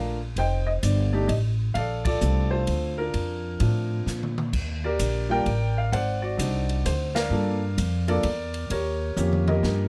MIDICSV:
0, 0, Header, 1, 4, 480
1, 0, Start_track
1, 0, Key_signature, -2, "major"
1, 0, Tempo, 464037
1, 370, Time_signature, 3, 2, 24, 8
1, 10220, End_track
2, 0, Start_track
2, 0, Title_t, "Grand piano"
2, 0, Program_c, 0, 0
2, 0, Note_on_c, 0, 57, 51
2, 0, Note_on_c, 0, 62, 50
2, 0, Note_on_c, 0, 65, 54
2, 0, Note_on_c, 0, 70, 61
2, 0, Note_on_c, 0, 77, 70
2, 171, Note_off_c, 0, 57, 0
2, 172, Note_off_c, 0, 70, 0
2, 173, Note_off_c, 0, 62, 0
2, 174, Note_off_c, 0, 65, 0
2, 191, Note_off_c, 0, 77, 0
2, 391, Note_on_c, 0, 72, 68
2, 399, Note_on_c, 0, 79, 92
2, 402, Note_on_c, 0, 75, 62
2, 672, Note_off_c, 0, 75, 0
2, 676, Note_off_c, 0, 79, 0
2, 688, Note_on_c, 0, 75, 82
2, 739, Note_off_c, 0, 75, 0
2, 857, Note_on_c, 0, 74, 74
2, 1130, Note_off_c, 0, 72, 0
2, 1144, Note_off_c, 0, 74, 0
2, 1166, Note_on_c, 0, 57, 65
2, 1166, Note_on_c, 0, 74, 75
2, 1170, Note_on_c, 0, 62, 56
2, 1171, Note_on_c, 0, 63, 57
2, 1176, Note_on_c, 0, 67, 73
2, 1313, Note_off_c, 0, 57, 0
2, 1315, Note_off_c, 0, 62, 0
2, 1316, Note_off_c, 0, 63, 0
2, 1318, Note_off_c, 0, 67, 0
2, 1319, Note_off_c, 0, 74, 0
2, 1319, Note_on_c, 0, 75, 69
2, 1390, Note_off_c, 0, 75, 0
2, 1802, Note_on_c, 0, 77, 95
2, 1826, Note_on_c, 0, 69, 71
2, 1826, Note_on_c, 0, 74, 68
2, 2095, Note_off_c, 0, 77, 0
2, 2101, Note_off_c, 0, 74, 0
2, 2117, Note_on_c, 0, 74, 105
2, 2129, Note_off_c, 0, 69, 0
2, 2138, Note_on_c, 0, 65, 65
2, 2145, Note_on_c, 0, 69, 69
2, 2275, Note_off_c, 0, 65, 0
2, 2287, Note_on_c, 0, 60, 49
2, 2289, Note_on_c, 0, 57, 57
2, 2290, Note_on_c, 0, 65, 61
2, 2295, Note_on_c, 0, 62, 51
2, 2564, Note_off_c, 0, 74, 0
2, 2592, Note_off_c, 0, 69, 0
2, 2593, Note_on_c, 0, 72, 93
2, 2599, Note_off_c, 0, 65, 0
2, 2607, Note_on_c, 0, 69, 58
2, 2614, Note_on_c, 0, 65, 68
2, 3016, Note_off_c, 0, 60, 0
2, 3017, Note_off_c, 0, 57, 0
2, 3020, Note_off_c, 0, 62, 0
2, 3042, Note_off_c, 0, 72, 0
2, 3078, Note_off_c, 0, 65, 0
2, 3081, Note_on_c, 0, 70, 77
2, 3093, Note_on_c, 0, 65, 57
2, 3099, Note_on_c, 0, 62, 51
2, 3208, Note_off_c, 0, 69, 0
2, 3707, Note_off_c, 0, 62, 0
2, 3712, Note_off_c, 0, 65, 0
2, 3718, Note_on_c, 0, 53, 45
2, 3722, Note_on_c, 0, 60, 46
2, 3722, Note_on_c, 0, 62, 47
2, 3727, Note_on_c, 0, 65, 53
2, 4164, Note_off_c, 0, 70, 0
2, 4451, Note_off_c, 0, 53, 0
2, 4453, Note_off_c, 0, 60, 0
2, 4454, Note_off_c, 0, 62, 0
2, 4456, Note_off_c, 0, 65, 0
2, 5009, Note_on_c, 0, 74, 90
2, 5015, Note_on_c, 0, 67, 65
2, 5021, Note_on_c, 0, 70, 66
2, 5450, Note_off_c, 0, 74, 0
2, 5471, Note_on_c, 0, 55, 68
2, 5472, Note_on_c, 0, 58, 57
2, 5475, Note_on_c, 0, 62, 57
2, 5476, Note_on_c, 0, 65, 76
2, 5485, Note_off_c, 0, 70, 0
2, 5494, Note_on_c, 0, 79, 102
2, 5500, Note_on_c, 0, 74, 74
2, 5501, Note_on_c, 0, 70, 74
2, 5611, Note_off_c, 0, 67, 0
2, 5624, Note_off_c, 0, 55, 0
2, 5624, Note_off_c, 0, 58, 0
2, 5626, Note_off_c, 0, 62, 0
2, 5626, Note_off_c, 0, 65, 0
2, 5978, Note_on_c, 0, 77, 90
2, 5980, Note_off_c, 0, 79, 0
2, 6094, Note_off_c, 0, 70, 0
2, 6094, Note_off_c, 0, 74, 0
2, 6128, Note_on_c, 0, 78, 96
2, 6135, Note_on_c, 0, 72, 70
2, 6139, Note_off_c, 0, 77, 0
2, 6140, Note_on_c, 0, 74, 74
2, 6417, Note_off_c, 0, 78, 0
2, 6420, Note_off_c, 0, 74, 0
2, 6436, Note_on_c, 0, 66, 73
2, 6436, Note_on_c, 0, 74, 87
2, 6583, Note_off_c, 0, 66, 0
2, 6589, Note_on_c, 0, 62, 55
2, 6594, Note_on_c, 0, 60, 51
2, 6598, Note_on_c, 0, 63, 52
2, 6599, Note_on_c, 0, 66, 62
2, 6882, Note_off_c, 0, 72, 0
2, 7095, Note_on_c, 0, 72, 84
2, 7103, Note_off_c, 0, 74, 0
2, 7328, Note_off_c, 0, 62, 0
2, 7330, Note_off_c, 0, 60, 0
2, 7332, Note_off_c, 0, 63, 0
2, 7332, Note_off_c, 0, 66, 0
2, 7393, Note_on_c, 0, 70, 69
2, 7395, Note_on_c, 0, 74, 68
2, 7398, Note_on_c, 0, 77, 88
2, 7412, Note_off_c, 0, 72, 0
2, 7555, Note_on_c, 0, 58, 64
2, 7558, Note_on_c, 0, 62, 52
2, 7564, Note_on_c, 0, 65, 56
2, 7566, Note_on_c, 0, 69, 67
2, 7842, Note_off_c, 0, 58, 0
2, 7843, Note_off_c, 0, 62, 0
2, 7846, Note_off_c, 0, 65, 0
2, 7847, Note_off_c, 0, 69, 0
2, 8315, Note_off_c, 0, 70, 0
2, 8316, Note_off_c, 0, 74, 0
2, 8354, Note_on_c, 0, 58, 70
2, 8356, Note_on_c, 0, 62, 61
2, 8358, Note_on_c, 0, 69, 78
2, 8358, Note_on_c, 0, 70, 64
2, 8359, Note_on_c, 0, 65, 66
2, 8365, Note_on_c, 0, 74, 102
2, 8387, Note_off_c, 0, 77, 0
2, 8506, Note_off_c, 0, 58, 0
2, 8507, Note_off_c, 0, 62, 0
2, 8508, Note_off_c, 0, 69, 0
2, 8509, Note_off_c, 0, 65, 0
2, 8964, Note_off_c, 0, 70, 0
2, 8968, Note_off_c, 0, 74, 0
2, 9011, Note_on_c, 0, 73, 78
2, 9013, Note_on_c, 0, 70, 62
2, 9022, Note_on_c, 0, 67, 59
2, 9482, Note_off_c, 0, 67, 0
2, 9487, Note_on_c, 0, 61, 59
2, 9489, Note_on_c, 0, 58, 57
2, 9492, Note_on_c, 0, 65, 57
2, 9498, Note_on_c, 0, 67, 67
2, 9763, Note_off_c, 0, 70, 0
2, 9796, Note_off_c, 0, 67, 0
2, 9801, Note_on_c, 0, 75, 72
2, 9811, Note_on_c, 0, 67, 60
2, 9812, Note_on_c, 0, 70, 59
2, 9827, Note_off_c, 0, 73, 0
2, 10219, Note_off_c, 0, 61, 0
2, 10220, Note_off_c, 0, 58, 0
2, 10220, Note_off_c, 0, 65, 0
2, 10220, Note_off_c, 0, 67, 0
2, 10220, Note_off_c, 0, 70, 0
2, 10220, Note_off_c, 0, 75, 0
2, 10220, End_track
3, 0, Start_track
3, 0, Title_t, "Upright bass"
3, 0, Program_c, 1, 32
3, 0, Note_on_c, 1, 34, 74
3, 360, Note_off_c, 1, 34, 0
3, 374, Note_on_c, 1, 29, 68
3, 837, Note_off_c, 1, 29, 0
3, 858, Note_on_c, 1, 31, 89
3, 1318, Note_off_c, 1, 31, 0
3, 1330, Note_on_c, 1, 33, 83
3, 1794, Note_off_c, 1, 33, 0
3, 1812, Note_on_c, 1, 34, 71
3, 2274, Note_off_c, 1, 34, 0
3, 2290, Note_on_c, 1, 36, 86
3, 2753, Note_off_c, 1, 36, 0
3, 2771, Note_on_c, 1, 38, 78
3, 3233, Note_off_c, 1, 38, 0
3, 3249, Note_on_c, 1, 41, 67
3, 3712, Note_off_c, 1, 41, 0
3, 3726, Note_on_c, 1, 45, 85
3, 4191, Note_off_c, 1, 45, 0
3, 4203, Note_on_c, 1, 46, 74
3, 4669, Note_off_c, 1, 46, 0
3, 4684, Note_on_c, 1, 39, 71
3, 5150, Note_off_c, 1, 39, 0
3, 5168, Note_on_c, 1, 34, 86
3, 5632, Note_off_c, 1, 34, 0
3, 5648, Note_on_c, 1, 33, 78
3, 6111, Note_off_c, 1, 33, 0
3, 6128, Note_on_c, 1, 32, 73
3, 6592, Note_off_c, 1, 32, 0
3, 6607, Note_on_c, 1, 36, 83
3, 7071, Note_off_c, 1, 36, 0
3, 7088, Note_on_c, 1, 38, 77
3, 7545, Note_off_c, 1, 38, 0
3, 7551, Note_on_c, 1, 43, 81
3, 8024, Note_off_c, 1, 43, 0
3, 8045, Note_on_c, 1, 41, 90
3, 8511, Note_off_c, 1, 41, 0
3, 8520, Note_on_c, 1, 40, 89
3, 8989, Note_off_c, 1, 40, 0
3, 8999, Note_on_c, 1, 39, 75
3, 9469, Note_off_c, 1, 39, 0
3, 9480, Note_on_c, 1, 41, 90
3, 9950, Note_off_c, 1, 41, 0
3, 9961, Note_on_c, 1, 43, 82
3, 10220, Note_off_c, 1, 43, 0
3, 10220, End_track
4, 0, Start_track
4, 0, Title_t, "Drums"
4, 375, Note_on_c, 9, 36, 18
4, 378, Note_on_c, 9, 51, 46
4, 479, Note_off_c, 9, 36, 0
4, 481, Note_off_c, 9, 51, 0
4, 855, Note_on_c, 9, 36, 21
4, 857, Note_on_c, 9, 44, 55
4, 857, Note_on_c, 9, 51, 62
4, 958, Note_off_c, 9, 36, 0
4, 961, Note_off_c, 9, 44, 0
4, 961, Note_off_c, 9, 51, 0
4, 1332, Note_on_c, 9, 36, 18
4, 1334, Note_on_c, 9, 51, 55
4, 1436, Note_off_c, 9, 36, 0
4, 1438, Note_off_c, 9, 51, 0
4, 1811, Note_on_c, 9, 36, 17
4, 1811, Note_on_c, 9, 51, 51
4, 1915, Note_off_c, 9, 36, 0
4, 1915, Note_off_c, 9, 51, 0
4, 2123, Note_on_c, 9, 51, 73
4, 2124, Note_on_c, 9, 36, 74
4, 2227, Note_off_c, 9, 36, 0
4, 2227, Note_off_c, 9, 51, 0
4, 2286, Note_on_c, 9, 44, 63
4, 2390, Note_off_c, 9, 44, 0
4, 2764, Note_on_c, 9, 51, 54
4, 2767, Note_on_c, 9, 36, 16
4, 2867, Note_off_c, 9, 51, 0
4, 2870, Note_off_c, 9, 36, 0
4, 3245, Note_on_c, 9, 51, 50
4, 3248, Note_on_c, 9, 36, 16
4, 3349, Note_off_c, 9, 51, 0
4, 3351, Note_off_c, 9, 36, 0
4, 3723, Note_on_c, 9, 51, 56
4, 3727, Note_on_c, 9, 36, 21
4, 3826, Note_off_c, 9, 51, 0
4, 3830, Note_off_c, 9, 36, 0
4, 4212, Note_on_c, 9, 38, 39
4, 4213, Note_on_c, 9, 44, 52
4, 4315, Note_off_c, 9, 38, 0
4, 4316, Note_off_c, 9, 44, 0
4, 4375, Note_on_c, 9, 47, 50
4, 4479, Note_off_c, 9, 47, 0
4, 4530, Note_on_c, 9, 47, 69
4, 4633, Note_off_c, 9, 47, 0
4, 4687, Note_on_c, 9, 36, 64
4, 4688, Note_on_c, 9, 49, 66
4, 4791, Note_off_c, 9, 36, 0
4, 4791, Note_off_c, 9, 49, 0
4, 5166, Note_on_c, 9, 36, 22
4, 5166, Note_on_c, 9, 44, 57
4, 5166, Note_on_c, 9, 51, 65
4, 5269, Note_off_c, 9, 36, 0
4, 5269, Note_off_c, 9, 44, 0
4, 5269, Note_off_c, 9, 51, 0
4, 5647, Note_on_c, 9, 36, 20
4, 5648, Note_on_c, 9, 51, 48
4, 5750, Note_off_c, 9, 36, 0
4, 5751, Note_off_c, 9, 51, 0
4, 6128, Note_on_c, 9, 36, 21
4, 6135, Note_on_c, 9, 51, 53
4, 6231, Note_off_c, 9, 36, 0
4, 6238, Note_off_c, 9, 51, 0
4, 6606, Note_on_c, 9, 36, 19
4, 6613, Note_on_c, 9, 44, 57
4, 6613, Note_on_c, 9, 51, 68
4, 6709, Note_off_c, 9, 36, 0
4, 6717, Note_off_c, 9, 44, 0
4, 6717, Note_off_c, 9, 51, 0
4, 6923, Note_on_c, 9, 51, 40
4, 7026, Note_off_c, 9, 51, 0
4, 7085, Note_on_c, 9, 36, 20
4, 7092, Note_on_c, 9, 44, 50
4, 7092, Note_on_c, 9, 51, 64
4, 7188, Note_off_c, 9, 36, 0
4, 7196, Note_off_c, 9, 44, 0
4, 7196, Note_off_c, 9, 51, 0
4, 7403, Note_on_c, 9, 38, 80
4, 7404, Note_on_c, 9, 51, 61
4, 7506, Note_off_c, 9, 38, 0
4, 7507, Note_off_c, 9, 51, 0
4, 8044, Note_on_c, 9, 36, 21
4, 8047, Note_on_c, 9, 44, 51
4, 8047, Note_on_c, 9, 51, 64
4, 8147, Note_off_c, 9, 36, 0
4, 8151, Note_off_c, 9, 44, 0
4, 8151, Note_off_c, 9, 51, 0
4, 8359, Note_on_c, 9, 51, 38
4, 8462, Note_off_c, 9, 51, 0
4, 8516, Note_on_c, 9, 51, 56
4, 8520, Note_on_c, 9, 36, 20
4, 8619, Note_off_c, 9, 51, 0
4, 8624, Note_off_c, 9, 36, 0
4, 8833, Note_on_c, 9, 51, 42
4, 8936, Note_off_c, 9, 51, 0
4, 9002, Note_on_c, 9, 51, 61
4, 9003, Note_on_c, 9, 36, 17
4, 9106, Note_off_c, 9, 36, 0
4, 9106, Note_off_c, 9, 51, 0
4, 9483, Note_on_c, 9, 47, 49
4, 9484, Note_on_c, 9, 44, 60
4, 9586, Note_off_c, 9, 47, 0
4, 9587, Note_off_c, 9, 44, 0
4, 9647, Note_on_c, 9, 47, 56
4, 9751, Note_off_c, 9, 47, 0
4, 9802, Note_on_c, 9, 47, 77
4, 9906, Note_off_c, 9, 47, 0
4, 9967, Note_on_c, 9, 38, 53
4, 10070, Note_off_c, 9, 38, 0
4, 10220, End_track
0, 0, End_of_file